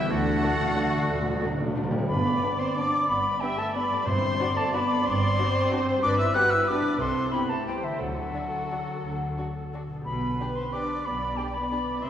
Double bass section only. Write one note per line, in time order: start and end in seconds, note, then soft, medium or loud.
0.10 0.37 D2 medium
1.09 1.36 D2 medium
2.09 2.36 G1 medium
3.09 3.36 G1 medium
4.08 4.34 G1 medium
5.06 5.32 G1 medium
6.03 6.29 G1 medium
7.00 7.26 C2 medium
8.00 8.28 D2 medium
9.03 9.31 D2 medium
10.06 10.34 B1 medium
11.06 11.32 B1 medium
12.03 12.10 C2 medium